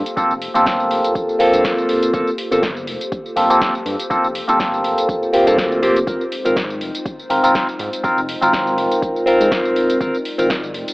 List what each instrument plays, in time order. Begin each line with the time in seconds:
Already playing: ambient pad A#3 F4 G4 A4 C5
0.06 closed hi-hat, tambourine
0.17 tine electric piano A#3 C4 F4 A4, kick, closed hi-hat, tambourine
0.31 analog synth bass F1, tambourine
0.42 open hi-hat
0.54 analog synth bass G1, tine electric piano A#3 C4 F4 A4, closed hi-hat, tambourine
0.66 kick, snare, closed hi-hat, tambourine
0.80 tambourine
0.91 analog synth bass F1, open hi-hat
1.04 closed hi-hat, tambourine
1.15 kick, closed hi-hat, tambourine
1.29 tambourine
1.39 tine electric piano A#3 C4 F4 A4, open hi-hat
1.53 analog synth bass G2, closed hi-hat, tambourine
1.65 kick, snare, closed hi-hat, tambourine
1.78 tambourine
1.89 open hi-hat
2.03 closed hi-hat, tambourine
2.13 analog synth bass G1, tine electric piano A#3 C4 F4 A4, kick, closed hi-hat, tambourine
2.27 tambourine
2.38 open hi-hat
2.51 analog synth bass G1, tine electric piano A#3 C4 F4 A4, closed hi-hat, tambourine
2.63 kick, snare, closed hi-hat, tambourine
2.77 tambourine
2.87 analog synth bass F1, open hi-hat
3.01 closed hi-hat, tambourine
3.12 kick, closed hi-hat, tambourine
3.26 tambourine
3.36 analog synth bass G1, tine electric piano A#3 C4 F4 A4, open hi-hat
3.50 tine electric piano A#3 C4 F4 A4, closed hi-hat, tambourine
3.61 kick, snare, closed hi-hat, tambourine
3.75 tambourine
3.86 analog synth bass G2, open hi-hat
3.99 closed hi-hat, tambourine
4.10 tine electric piano A#3 C4 F4 A4, kick, closed hi-hat, tambourine
4.24 analog synth bass F1, tambourine
4.35 open hi-hat
4.48 analog synth bass G1, tine electric piano A#3 C4 F4 A4, closed hi-hat, tambourine
4.60 kick, snare, closed hi-hat, tambourine
4.74 tambourine
4.84 analog synth bass F1, open hi-hat
4.98 closed hi-hat, tambourine
5.09 kick, closed hi-hat, tambourine
5.23 tambourine
5.33 tine electric piano A#3 C4 F4 G4, open hi-hat
5.46 analog synth bass G2, tine electric piano A#3 C4 F4 A4, closed hi-hat, tambourine
5.58 analog synth bass D2, kick, snare, closed hi-hat, tambourine
5.72 tambourine
5.82 analog synth bass F1, tine electric piano A#3 C4 F4 G4, open hi-hat
5.96 analog synth bass G1, closed hi-hat, tambourine
6.07 analog synth bass G#1, ambient pad G#3 C4 D#4, tine electric piano C4 F4 A#4, kick, closed hi-hat, tambourine
6.21 tambourine
6.32 open hi-hat
6.45 analog synth bass G#1, tine electric piano C4 F4 A#4, closed hi-hat, tambourine
6.56 kick, snare, closed hi-hat, tambourine
6.70 tambourine
6.81 analog synth bass F1, open hi-hat
6.95 closed hi-hat, tambourine
7.06 kick, closed hi-hat, tambourine
7.19 tambourine
7.30 analog synth bass G#1, tine electric piano C4 F4 A#4, open hi-hat
7.43 tine electric piano C4 F4 A#4, closed hi-hat, tambourine
7.55 kick, snare, closed hi-hat, tambourine
7.69 tambourine
7.79 analog synth bass G#2, open hi-hat
7.93 closed hi-hat, tambourine
8.03 tine electric piano C4 F4 A#4, kick, closed hi-hat, tambourine
8.17 analog synth bass F1, tambourine
8.29 open hi-hat
8.41 analog synth bass G#1, tine electric piano C4 F4 A#4, closed hi-hat, tambourine
8.53 kick, snare, closed hi-hat, tambourine
8.67 tambourine
8.78 analog synth bass F1, open hi-hat
8.91 closed hi-hat, tambourine
9.02 kick, closed hi-hat, tambourine
9.16 tambourine
9.26 tine electric piano C4 F4 A#4, open hi-hat
9.40 analog synth bass G#2, closed hi-hat, tambourine
9.51 kick, snare, closed hi-hat, tambourine
9.65 tambourine
9.76 open hi-hat
9.90 closed hi-hat, tambourine
10.00 analog synth bass G#1, tine electric piano C4 F4 A#4, ambient pad D5, kick, closed hi-hat, tambourine
10.14 tambourine
10.25 open hi-hat
10.38 analog synth bass G#1, tine electric piano C4 F4 A#4, closed hi-hat, tambourine
10.50 kick, snare, closed hi-hat, tambourine
10.64 tambourine
10.74 analog synth bass F1, open hi-hat
10.88 closed hi-hat, tambourine